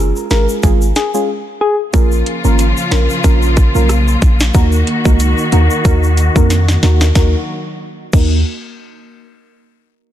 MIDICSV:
0, 0, Header, 1, 6, 480
1, 0, Start_track
1, 0, Key_signature, -6, "minor"
1, 0, Tempo, 652174
1, 1426, Time_signature, 4, 2, 24, 8
1, 7450, End_track
2, 0, Start_track
2, 0, Title_t, "Soft synth lead"
2, 0, Program_c, 0, 80
2, 227, Note_on_c, 0, 70, 87
2, 333, Note_off_c, 0, 70, 0
2, 708, Note_on_c, 0, 68, 74
2, 814, Note_off_c, 0, 68, 0
2, 1186, Note_on_c, 0, 68, 84
2, 1293, Note_off_c, 0, 68, 0
2, 7450, End_track
3, 0, Start_track
3, 0, Title_t, "Synth stab"
3, 0, Program_c, 1, 62
3, 0, Note_on_c, 1, 56, 83
3, 0, Note_on_c, 1, 61, 75
3, 0, Note_on_c, 1, 65, 75
3, 0, Note_on_c, 1, 68, 87
3, 199, Note_off_c, 1, 56, 0
3, 200, Note_off_c, 1, 61, 0
3, 201, Note_off_c, 1, 65, 0
3, 201, Note_off_c, 1, 68, 0
3, 222, Note_on_c, 1, 56, 80
3, 224, Note_on_c, 1, 61, 71
3, 225, Note_on_c, 1, 65, 72
3, 227, Note_on_c, 1, 68, 87
3, 447, Note_off_c, 1, 56, 0
3, 448, Note_off_c, 1, 61, 0
3, 449, Note_off_c, 1, 65, 0
3, 450, Note_off_c, 1, 68, 0
3, 464, Note_on_c, 1, 56, 96
3, 466, Note_on_c, 1, 61, 89
3, 467, Note_on_c, 1, 65, 89
3, 468, Note_on_c, 1, 68, 110
3, 634, Note_off_c, 1, 56, 0
3, 635, Note_off_c, 1, 61, 0
3, 636, Note_off_c, 1, 65, 0
3, 636, Note_off_c, 1, 68, 0
3, 839, Note_on_c, 1, 56, 83
3, 840, Note_on_c, 1, 61, 75
3, 841, Note_on_c, 1, 65, 72
3, 842, Note_on_c, 1, 68, 92
3, 945, Note_off_c, 1, 56, 0
3, 946, Note_off_c, 1, 61, 0
3, 946, Note_off_c, 1, 65, 0
3, 947, Note_off_c, 1, 68, 0
3, 1421, Note_on_c, 1, 58, 95
3, 1423, Note_on_c, 1, 61, 84
3, 1424, Note_on_c, 1, 65, 88
3, 1425, Note_on_c, 1, 70, 103
3, 1766, Note_off_c, 1, 58, 0
3, 1767, Note_off_c, 1, 61, 0
3, 1767, Note_off_c, 1, 65, 0
3, 1768, Note_off_c, 1, 70, 0
3, 1796, Note_on_c, 1, 58, 81
3, 1798, Note_on_c, 1, 61, 71
3, 1800, Note_on_c, 1, 65, 72
3, 1801, Note_on_c, 1, 70, 87
3, 1948, Note_off_c, 1, 58, 0
3, 1949, Note_off_c, 1, 61, 0
3, 1950, Note_off_c, 1, 65, 0
3, 1951, Note_off_c, 1, 70, 0
3, 2142, Note_on_c, 1, 58, 77
3, 2144, Note_on_c, 1, 61, 71
3, 2145, Note_on_c, 1, 65, 74
3, 2146, Note_on_c, 1, 70, 87
3, 2313, Note_off_c, 1, 58, 0
3, 2314, Note_off_c, 1, 61, 0
3, 2315, Note_off_c, 1, 65, 0
3, 2315, Note_off_c, 1, 70, 0
3, 2382, Note_on_c, 1, 58, 96
3, 2384, Note_on_c, 1, 61, 88
3, 2384, Note_on_c, 1, 65, 89
3, 2386, Note_on_c, 1, 70, 106
3, 2726, Note_off_c, 1, 58, 0
3, 2727, Note_off_c, 1, 61, 0
3, 2727, Note_off_c, 1, 65, 0
3, 2728, Note_off_c, 1, 70, 0
3, 2758, Note_on_c, 1, 58, 80
3, 2759, Note_on_c, 1, 61, 72
3, 2760, Note_on_c, 1, 65, 73
3, 2761, Note_on_c, 1, 70, 85
3, 2909, Note_off_c, 1, 58, 0
3, 2909, Note_off_c, 1, 61, 0
3, 2910, Note_off_c, 1, 65, 0
3, 2911, Note_off_c, 1, 70, 0
3, 3344, Note_on_c, 1, 58, 98
3, 3345, Note_on_c, 1, 63, 84
3, 3347, Note_on_c, 1, 66, 87
3, 3347, Note_on_c, 1, 70, 110
3, 3514, Note_off_c, 1, 58, 0
3, 3515, Note_off_c, 1, 63, 0
3, 3516, Note_off_c, 1, 66, 0
3, 3516, Note_off_c, 1, 70, 0
3, 3718, Note_on_c, 1, 58, 82
3, 3720, Note_on_c, 1, 63, 75
3, 3721, Note_on_c, 1, 66, 74
3, 3722, Note_on_c, 1, 70, 92
3, 4040, Note_off_c, 1, 58, 0
3, 4040, Note_off_c, 1, 63, 0
3, 4041, Note_off_c, 1, 66, 0
3, 4042, Note_off_c, 1, 70, 0
3, 4064, Note_on_c, 1, 58, 78
3, 4064, Note_on_c, 1, 63, 70
3, 4067, Note_on_c, 1, 66, 74
3, 4069, Note_on_c, 1, 70, 88
3, 4288, Note_off_c, 1, 58, 0
3, 4288, Note_off_c, 1, 63, 0
3, 4289, Note_off_c, 1, 66, 0
3, 4291, Note_off_c, 1, 70, 0
3, 4302, Note_on_c, 1, 58, 95
3, 4304, Note_on_c, 1, 63, 89
3, 4306, Note_on_c, 1, 66, 89
3, 4307, Note_on_c, 1, 70, 104
3, 4473, Note_off_c, 1, 58, 0
3, 4474, Note_off_c, 1, 63, 0
3, 4475, Note_off_c, 1, 66, 0
3, 4476, Note_off_c, 1, 70, 0
3, 4680, Note_on_c, 1, 58, 77
3, 4681, Note_on_c, 1, 63, 75
3, 4682, Note_on_c, 1, 66, 73
3, 4684, Note_on_c, 1, 70, 92
3, 4830, Note_off_c, 1, 58, 0
3, 4831, Note_off_c, 1, 63, 0
3, 4831, Note_off_c, 1, 66, 0
3, 4832, Note_off_c, 1, 70, 0
3, 5023, Note_on_c, 1, 58, 74
3, 5025, Note_on_c, 1, 63, 69
3, 5027, Note_on_c, 1, 66, 71
3, 5028, Note_on_c, 1, 70, 87
3, 5194, Note_off_c, 1, 58, 0
3, 5195, Note_off_c, 1, 63, 0
3, 5195, Note_off_c, 1, 66, 0
3, 5196, Note_off_c, 1, 70, 0
3, 5263, Note_on_c, 1, 58, 87
3, 5266, Note_on_c, 1, 63, 82
3, 5268, Note_on_c, 1, 66, 81
3, 5271, Note_on_c, 1, 70, 98
3, 5409, Note_off_c, 1, 58, 0
3, 5410, Note_off_c, 1, 63, 0
3, 5412, Note_off_c, 1, 66, 0
3, 5413, Note_off_c, 1, 70, 0
3, 5984, Note_on_c, 1, 58, 93
3, 5985, Note_on_c, 1, 63, 84
3, 5987, Note_on_c, 1, 66, 85
3, 5990, Note_on_c, 1, 70, 99
3, 6169, Note_off_c, 1, 58, 0
3, 6169, Note_off_c, 1, 63, 0
3, 6171, Note_off_c, 1, 66, 0
3, 6172, Note_off_c, 1, 70, 0
3, 7450, End_track
4, 0, Start_track
4, 0, Title_t, "String section"
4, 0, Program_c, 2, 48
4, 1427, Note_on_c, 2, 53, 71
4, 1428, Note_on_c, 2, 49, 78
4, 1428, Note_on_c, 2, 58, 72
4, 1428, Note_on_c, 2, 65, 90
4, 3327, Note_off_c, 2, 53, 0
4, 3328, Note_off_c, 2, 49, 0
4, 3328, Note_off_c, 2, 65, 0
4, 3344, Note_on_c, 2, 51, 81
4, 3345, Note_on_c, 2, 66, 90
4, 5238, Note_off_c, 2, 58, 0
4, 5246, Note_off_c, 2, 51, 0
4, 5246, Note_off_c, 2, 66, 0
4, 5263, Note_on_c, 2, 51, 72
4, 5264, Note_on_c, 2, 54, 66
4, 5264, Note_on_c, 2, 58, 64
4, 5264, Note_on_c, 2, 66, 82
4, 5488, Note_off_c, 2, 51, 0
4, 5488, Note_off_c, 2, 54, 0
4, 5488, Note_off_c, 2, 58, 0
4, 5488, Note_off_c, 2, 66, 0
4, 7450, End_track
5, 0, Start_track
5, 0, Title_t, "808-style bass"
5, 0, Program_c, 3, 38
5, 0, Note_on_c, 3, 30, 96
5, 91, Note_off_c, 3, 30, 0
5, 227, Note_on_c, 3, 32, 87
5, 345, Note_off_c, 3, 32, 0
5, 467, Note_on_c, 3, 32, 110
5, 677, Note_off_c, 3, 32, 0
5, 1426, Note_on_c, 3, 34, 108
5, 1637, Note_off_c, 3, 34, 0
5, 1800, Note_on_c, 3, 32, 84
5, 2011, Note_off_c, 3, 32, 0
5, 2145, Note_on_c, 3, 34, 88
5, 2263, Note_off_c, 3, 34, 0
5, 2386, Note_on_c, 3, 34, 110
5, 2715, Note_off_c, 3, 34, 0
5, 2761, Note_on_c, 3, 35, 90
5, 3064, Note_off_c, 3, 35, 0
5, 3106, Note_on_c, 3, 34, 102
5, 3317, Note_off_c, 3, 34, 0
5, 3345, Note_on_c, 3, 39, 112
5, 3556, Note_off_c, 3, 39, 0
5, 3720, Note_on_c, 3, 37, 88
5, 3931, Note_off_c, 3, 37, 0
5, 4066, Note_on_c, 3, 39, 85
5, 4184, Note_off_c, 3, 39, 0
5, 4305, Note_on_c, 3, 39, 100
5, 4634, Note_off_c, 3, 39, 0
5, 4679, Note_on_c, 3, 41, 97
5, 4983, Note_off_c, 3, 41, 0
5, 5026, Note_on_c, 3, 39, 96
5, 5237, Note_off_c, 3, 39, 0
5, 5266, Note_on_c, 3, 39, 103
5, 5411, Note_off_c, 3, 39, 0
5, 5986, Note_on_c, 3, 39, 97
5, 6209, Note_off_c, 3, 39, 0
5, 7450, End_track
6, 0, Start_track
6, 0, Title_t, "Drums"
6, 119, Note_on_c, 9, 82, 60
6, 192, Note_off_c, 9, 82, 0
6, 225, Note_on_c, 9, 82, 51
6, 226, Note_on_c, 9, 42, 60
6, 229, Note_on_c, 9, 38, 115
6, 299, Note_off_c, 9, 82, 0
6, 300, Note_off_c, 9, 42, 0
6, 302, Note_off_c, 9, 38, 0
6, 359, Note_on_c, 9, 82, 73
6, 432, Note_off_c, 9, 82, 0
6, 464, Note_on_c, 9, 82, 72
6, 467, Note_on_c, 9, 36, 90
6, 469, Note_on_c, 9, 42, 67
6, 537, Note_off_c, 9, 82, 0
6, 540, Note_off_c, 9, 36, 0
6, 542, Note_off_c, 9, 42, 0
6, 600, Note_on_c, 9, 82, 54
6, 674, Note_off_c, 9, 82, 0
6, 705, Note_on_c, 9, 82, 53
6, 706, Note_on_c, 9, 42, 68
6, 708, Note_on_c, 9, 38, 76
6, 779, Note_off_c, 9, 82, 0
6, 780, Note_off_c, 9, 42, 0
6, 782, Note_off_c, 9, 38, 0
6, 842, Note_on_c, 9, 82, 70
6, 915, Note_off_c, 9, 82, 0
6, 1425, Note_on_c, 9, 42, 78
6, 1425, Note_on_c, 9, 82, 63
6, 1426, Note_on_c, 9, 36, 110
6, 1498, Note_off_c, 9, 82, 0
6, 1499, Note_off_c, 9, 42, 0
6, 1500, Note_off_c, 9, 36, 0
6, 1558, Note_on_c, 9, 82, 51
6, 1632, Note_off_c, 9, 82, 0
6, 1666, Note_on_c, 9, 42, 62
6, 1740, Note_off_c, 9, 42, 0
6, 1800, Note_on_c, 9, 82, 67
6, 1873, Note_off_c, 9, 82, 0
6, 1905, Note_on_c, 9, 82, 75
6, 1906, Note_on_c, 9, 42, 79
6, 1979, Note_off_c, 9, 82, 0
6, 1980, Note_off_c, 9, 42, 0
6, 2040, Note_on_c, 9, 82, 57
6, 2114, Note_off_c, 9, 82, 0
6, 2145, Note_on_c, 9, 42, 62
6, 2146, Note_on_c, 9, 82, 50
6, 2148, Note_on_c, 9, 38, 111
6, 2219, Note_off_c, 9, 42, 0
6, 2220, Note_off_c, 9, 82, 0
6, 2222, Note_off_c, 9, 38, 0
6, 2280, Note_on_c, 9, 82, 74
6, 2354, Note_off_c, 9, 82, 0
6, 2384, Note_on_c, 9, 82, 73
6, 2386, Note_on_c, 9, 36, 91
6, 2388, Note_on_c, 9, 42, 65
6, 2457, Note_off_c, 9, 82, 0
6, 2460, Note_off_c, 9, 36, 0
6, 2462, Note_off_c, 9, 42, 0
6, 2520, Note_on_c, 9, 82, 50
6, 2593, Note_off_c, 9, 82, 0
6, 2625, Note_on_c, 9, 82, 56
6, 2626, Note_on_c, 9, 42, 66
6, 2627, Note_on_c, 9, 36, 107
6, 2699, Note_off_c, 9, 42, 0
6, 2699, Note_off_c, 9, 82, 0
6, 2701, Note_off_c, 9, 36, 0
6, 2761, Note_on_c, 9, 82, 73
6, 2835, Note_off_c, 9, 82, 0
6, 2866, Note_on_c, 9, 37, 93
6, 2866, Note_on_c, 9, 42, 79
6, 2866, Note_on_c, 9, 82, 74
6, 2939, Note_off_c, 9, 37, 0
6, 2939, Note_off_c, 9, 82, 0
6, 2940, Note_off_c, 9, 42, 0
6, 3001, Note_on_c, 9, 82, 54
6, 3075, Note_off_c, 9, 82, 0
6, 3105, Note_on_c, 9, 42, 46
6, 3105, Note_on_c, 9, 82, 49
6, 3107, Note_on_c, 9, 36, 91
6, 3179, Note_off_c, 9, 42, 0
6, 3179, Note_off_c, 9, 82, 0
6, 3180, Note_off_c, 9, 36, 0
6, 3239, Note_on_c, 9, 82, 77
6, 3242, Note_on_c, 9, 38, 125
6, 3312, Note_off_c, 9, 82, 0
6, 3316, Note_off_c, 9, 38, 0
6, 3342, Note_on_c, 9, 82, 65
6, 3346, Note_on_c, 9, 36, 111
6, 3346, Note_on_c, 9, 42, 77
6, 3415, Note_off_c, 9, 82, 0
6, 3419, Note_off_c, 9, 36, 0
6, 3419, Note_off_c, 9, 42, 0
6, 3475, Note_on_c, 9, 82, 51
6, 3549, Note_off_c, 9, 82, 0
6, 3586, Note_on_c, 9, 42, 64
6, 3659, Note_off_c, 9, 42, 0
6, 3718, Note_on_c, 9, 82, 70
6, 3720, Note_on_c, 9, 36, 100
6, 3791, Note_off_c, 9, 82, 0
6, 3793, Note_off_c, 9, 36, 0
6, 3824, Note_on_c, 9, 82, 78
6, 3826, Note_on_c, 9, 42, 78
6, 3897, Note_off_c, 9, 82, 0
6, 3900, Note_off_c, 9, 42, 0
6, 3959, Note_on_c, 9, 82, 56
6, 4032, Note_off_c, 9, 82, 0
6, 4064, Note_on_c, 9, 42, 61
6, 4064, Note_on_c, 9, 65, 70
6, 4064, Note_on_c, 9, 82, 49
6, 4138, Note_off_c, 9, 42, 0
6, 4138, Note_off_c, 9, 65, 0
6, 4138, Note_off_c, 9, 82, 0
6, 4198, Note_on_c, 9, 82, 76
6, 4272, Note_off_c, 9, 82, 0
6, 4303, Note_on_c, 9, 82, 70
6, 4305, Note_on_c, 9, 36, 87
6, 4306, Note_on_c, 9, 42, 65
6, 4377, Note_off_c, 9, 82, 0
6, 4379, Note_off_c, 9, 36, 0
6, 4380, Note_off_c, 9, 42, 0
6, 4440, Note_on_c, 9, 82, 54
6, 4514, Note_off_c, 9, 82, 0
6, 4544, Note_on_c, 9, 42, 66
6, 4545, Note_on_c, 9, 82, 57
6, 4618, Note_off_c, 9, 42, 0
6, 4619, Note_off_c, 9, 82, 0
6, 4679, Note_on_c, 9, 36, 99
6, 4681, Note_on_c, 9, 82, 71
6, 4753, Note_off_c, 9, 36, 0
6, 4755, Note_off_c, 9, 82, 0
6, 4786, Note_on_c, 9, 38, 58
6, 4787, Note_on_c, 9, 42, 80
6, 4787, Note_on_c, 9, 65, 50
6, 4787, Note_on_c, 9, 82, 72
6, 4859, Note_off_c, 9, 38, 0
6, 4860, Note_off_c, 9, 42, 0
6, 4860, Note_off_c, 9, 65, 0
6, 4860, Note_off_c, 9, 82, 0
6, 4920, Note_on_c, 9, 38, 65
6, 4923, Note_on_c, 9, 82, 55
6, 4993, Note_off_c, 9, 38, 0
6, 4996, Note_off_c, 9, 82, 0
6, 5026, Note_on_c, 9, 38, 92
6, 5026, Note_on_c, 9, 42, 47
6, 5027, Note_on_c, 9, 82, 51
6, 5100, Note_off_c, 9, 38, 0
6, 5100, Note_off_c, 9, 42, 0
6, 5100, Note_off_c, 9, 82, 0
6, 5159, Note_on_c, 9, 38, 94
6, 5159, Note_on_c, 9, 65, 80
6, 5159, Note_on_c, 9, 82, 79
6, 5233, Note_off_c, 9, 38, 0
6, 5233, Note_off_c, 9, 65, 0
6, 5233, Note_off_c, 9, 82, 0
6, 5265, Note_on_c, 9, 82, 87
6, 5266, Note_on_c, 9, 36, 107
6, 5266, Note_on_c, 9, 38, 91
6, 5339, Note_off_c, 9, 36, 0
6, 5339, Note_off_c, 9, 38, 0
6, 5339, Note_off_c, 9, 82, 0
6, 5985, Note_on_c, 9, 82, 80
6, 5986, Note_on_c, 9, 36, 112
6, 5986, Note_on_c, 9, 49, 89
6, 6058, Note_off_c, 9, 82, 0
6, 6060, Note_off_c, 9, 36, 0
6, 6060, Note_off_c, 9, 49, 0
6, 7450, End_track
0, 0, End_of_file